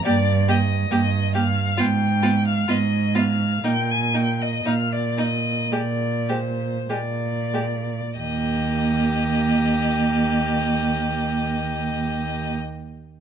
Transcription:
0.05 G2 A#3 G4 D5
0.48 A#3 G4 D#5
0.90 G2 A#3 G4
1.35 A#3 G4 F5
1.78 G#2 B3 F4 G5
2.23 B3 F4
2.48 F5
2.68 G#2 B3 F4 D#5
3.15 B3 F4 F5
3.64 A#2 A#3 D#4 G5
3.91 G#5
4.14 A#3 D#4 G5
4.41 D#5
4.65 A#2 A#3 D#4 F5
4.92 D5
5.18 A#3 D#4 D#5
5.71 A#2 G#3 G4 D5
6.29 G#3 G4 C5
6.90 A#2 G#3 G4 D5
7.54 G#3 G4
8.18 D#2 A#3 G4 D#5

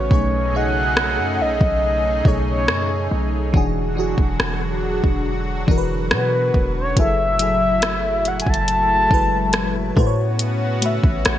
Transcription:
Already playing: C#3 A3 F#4 B4 C#5
0.10 B1 B2 A3 D#4 G#4, kick
0.14 C#5
0.53 B2 A3 D#4 G#4 F#5
0.57 D#5
0.97 cross-stick
1.18 F#2
1.40 B1 D#5
1.61 B1, kick
2.24 B1 B2 A3 D#4 G#4 C#5, kick
2.28 C#5
2.49 C#5
2.68 F#2, cross-stick
3.11 B1
3.53 E1 D3 E3 F#3 D4 F#4, kick
3.57 G#4
3.95 E3 D4 F#4
4.00 G#4
4.18 E1, kick
4.40 E1, cross-stick
5.04 E1, kick
5.67 E1 E3 D4 F#4, kick
5.71 A#4
5.78 B4
6.11 B2 B4, cross-stick
6.54 E1, kick
6.77 C#5
6.96 F#1 A2 F#3 E4 G#4 E5, kick, closed hi-hat
7.00 A4
7.39 F#3 E4 G#4, closed hi-hat
7.43 A4
7.82 cross-stick, closed hi-hat
8.25 F#5, closed hi-hat
8.40 G#5, closed hi-hat
8.47 F#1 A5, kick
8.54 closed hi-hat
8.68 closed hi-hat
9.10 F#1 F#3 G#3 E4, kick
9.14 B4
9.53 cross-stick, closed hi-hat
9.96 A2 C#3 A3 B3 F#4 B4, kick
10.00 C5
10.07 C#5
10.39 closed hi-hat
10.81 A3 F#4 B4, closed hi-hat
10.86 E5
11.04 A1, kick
11.25 A1, cross-stick, closed hi-hat

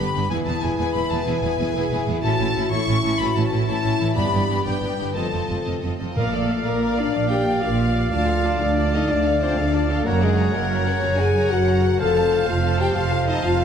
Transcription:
Already playing: G2 D3 G3 G4 B4 B5
0.00 B3 D4 G4 B4
0.14 G1 G2 D3 B3 D4 G4 B4
0.30 E1 E2 B3 E4 G#4 B4 G#5
0.45 E1 E2 B3 E4 G#4 B4 A5
0.61 E1 E2 B3 E4 G#4 B4 G#5
0.77 E1 E2 B3 E4 G#4 B4 G#5
0.94 E1 E2 B3 E4 G#4 B4 B5
1.09 E1 E2 B2 B3 E4 G#4 B4 A5
1.25 E1 E2 B3 E4 G#4 B4 G#5
1.42 E1 E2 B2 B3 E4 G#4 B4
1.58 E1 E2 B3 E4 G#4 B4
1.74 E1 E2 B3 E4 G#4 B4
1.90 E1 E2 B3 E4 G#4 B4
2.07 E1 E2 B2 B3 E4 G#4 B4
2.22 A1 A2 C#4 E4 F#4 A4 A5
2.39 A1 A2 C#4 E4 A4
2.54 A1 A2 C#4 E4 A4
2.70 A1 A2 C#4 E4 A4 C#5 C#6
2.87 A1 A2 C#4 E4 A4
3.02 A1 A2 E3 C#4 E4 A4
3.18 A1 A2 C#4 E4 F#4 A4 B5
3.35 A1 A2 E3 C#4 E4 A4 A5
3.50 A1 A2 C#4 E4 A4
3.66 A1 A2 C#4 E4 A4 C#5 A5
3.83 A1 A2 C#4 E4 A4
3.99 A1 A2 E3 C#4 E4 A4
4.16 G1 G2 B3 D4 G4 D5 B5
4.33 G1 G2 B3 D4 G4 D5
4.49 G1 G2 B3 D4 G4 D5
4.65 G1 G2 B3 D4 G4 B4 D5 G5
4.82 G1 G2 B3 D4 G4 D5
4.98 G1 G2 D3 B3 D4 G4 D5
5.14 F1 F2 C4 F4 A4 D#5 A5
5.32 F1 F2 C4 F4 A4 D#5
5.49 F1 F2 C4 F4 A4 C5 D#5
5.64 F1 F2 C4 F4 A4 D#5
5.81 F1 F2 C4 F4 A4 D#5
5.98 F1 F2 C3 C4 F4 A4 D#5
6.14 A#1 A#2 A#3 A#4 D5 F5
6.18 D5
6.30 A3 A#3 A4 D5 F5
6.34 D5
6.49 D5 F5
6.64 A#1 A#2 A#3 A#4 D5 F5
6.82 D5 F5
6.97 D4 A#4 D5 F5
7.13 A#1 A#2 F3 D5 F5
7.29 G4 A#4 D5 F5 G5
7.47 D5 F5
7.62 A#1 A#2 F4 A#4 D5 F5
7.78 D5 F5
7.94 A#4 D5 F5
8.11 D2 D3 F4 D5 F5 A5
8.27 A4 F5
8.44 F4 D5 A5
8.59 D2 D4 A4 D5 F5
8.76 F4 D5 A5
8.93 D#4 A4 D#5 F5
9.08 D2 A3 D4 F4 D5 A5
9.24 A4 F5
9.40 C4 F4 C5 D5 A5
9.58 D2 D4 A4 D5 F5
9.74 F4 D5 A5
9.90 A3 A4 F5
10.05 F#1 F#2 A#3 F#4 A#4 C#5 F#5 A#5
10.21 G#3 G#4 A#4 F#5
10.38 F#4 C#5 A#5
10.53 F#1 F#2 A#3 A#4 F#5
10.69 F#4 C#5 A#5
10.84 C#4 A#4 C#5 F#5
10.89 C#5
11.02 F#1 F#2 C#3 F#4 C#5 A#5
11.18 G#4 A#4 F#5 G#5
11.34 F#4 C#5 A#5
11.50 F#1 F#2 F#4 A#4 F#5
11.66 F#4 C#5 A#5
11.82 A#4 F#5
11.99 F1 F2 A4 C5 F5 A5
12.15 F4 C5 F5 A5
12.31 A4 F5 A5
12.48 F1 F2 F4 C5 F5 A5
12.63 A4 F5 A5
12.78 F4 G4 C5 F5 G5 A5
12.94 F1 F2 C3 F4 A4 F5 A5
13.11 F4 C5 F5 A5
13.26 D#4 A4 D#5 F5 A5
13.42 F1 F2 F4 C5 F5 A5
13.58 A4 F5 A5

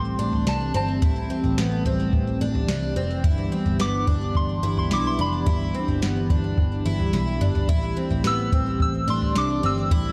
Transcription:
Already playing: A1 E3 G3 A3 C4 G4 C6
0.19 A1 D4
0.33 floor tom
0.46 C2 D4 A5, snare
0.74 G1 C4 A5
1.02 A1 E4, kick, floor tom
1.30 C4
1.44 A1, floor tom
1.57 A1 B3, snare
1.85 A1 C4, floor tom
2.13 A1, kick, floor tom
2.41 A1 D4
2.55 floor tom
2.69 C2 D4, snare
2.96 F1 C4
3.24 G1 B3 D4 E4, kick, floor tom
3.52 C4
3.66 G1, floor tom
3.80 G1 B3 D6, snare
4.07 G1 D4, kick, floor tom
4.35 G1 C6, kick, floor tom
4.63 G1 E4
4.77 C6, floor tom
4.91 B1 E4 D6, snare
5.07 C6
5.19 F1 D4 B5
5.46 G1 E4, kick, floor tom
5.75 C4
5.88 G1, floor tom
6.02 G1 B3, snare
6.30 G1 D4, kick, floor tom
6.57 G1, kick, floor tom
6.85 G1 E4
7.00 floor tom
7.13 B1 E4, snare
7.41 G1 D4, mid tom
7.55 floor tom
7.69 A1 G3 A3 C4 E4, kick, floor tom
7.97 C4
8.11 A1, floor tom
8.24 A1 B3 E6, snare
8.52 A1 C4, kick, floor tom
8.80 A1 E6, kick, floor tom
9.08 A1 D4 C6
9.22 floor tom
9.35 C2 D4 D6, snare
9.63 G1 C4 E6
9.91 A1 E4, kick, floor tom

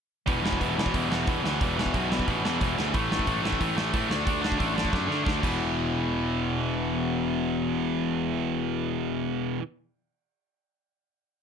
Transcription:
0.27 E1 E2 B2 E3, kick, open hi-hat
0.42 E1 E2 B2 E3, snare
0.53 kick
0.61 E1 E2 B2 E3, kick, open hi-hat
0.76 E1 E2 B2 E3, snare
0.86 kick
0.94 E1 E2 B2 E3, kick, open hi-hat
1.10 E1 E2 B2 E3, snare
1.27 E2 B2 E3, kick, open hi-hat
1.43 D2 E2 B2 E3, snare
1.61 E1 E2 B2 E3, kick, open hi-hat
1.79 E2 B2 E3, snare
1.86 kick
1.94 B1 E2 B2 E3, kick, open hi-hat
2.12 E2 B2 E3, snare
2.19 kick
2.28 A1 E2 B2 E3, kick, open hi-hat
2.44 E2 B2 E3, snare
2.61 E1 E2 B2 E3, kick, open hi-hat
2.77 D2 E2 B2 E3, snare
2.94 A1 A2 E3 A3, kick, open hi-hat
3.10 A1 A2 E3 A3, snare
3.19 kick
3.27 A1 A2 E3 A3, kick, open hi-hat
3.43 A1 A2 E3 A3, snare
3.52 kick
3.60 A1 A2 E3 A3, kick, open hi-hat
3.76 A1 A2 E3 A3, snare
3.93 A2 E3 A3, kick, open hi-hat
4.09 D2 D3 A3 D4, snare
4.26 D2 D3 A3 D4, kick, open hi-hat
4.41 D3 A3 D4, snare
4.52 kick
4.58 A1 D3 A3 D4, kick, open hi-hat
4.74 D3 A3 D4, snare
4.85 kick
4.93 F#2 D3 A3 D4, kick, snare
5.08 D3 A3 D4, snare
5.24 D2 D3 A3 D4, kick
5.28 snare
5.40 E1 E2 B2, kick
5.44 E3, crash

